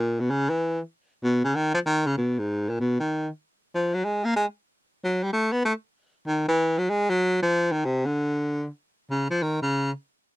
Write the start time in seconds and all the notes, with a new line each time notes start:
Already playing: A#2
0.20 B2
0.30 C#3
0.50 E3
1.23 B2
1.44 C#3
1.55 D#3
1.74 F3
1.86 D#3
2.07 C#3
2.17 B2
2.38 G#2
2.69 A#2
2.80 B2
3.00 D#3
3.75 F3
3.94 F#3
4.05 G#3
4.25 A#3
4.36 G#3
5.04 F#3
5.23 G3
5.33 A3
5.52 B3
5.65 A3
6.27 D#3
6.48 E3
6.78 F#3
6.90 G#3
7.09 F#3
7.42 F3
7.72 D#3
7.85 C3
8.05 D3
9.11 C#3
9.30 F3
9.43 D#3
9.62 C#3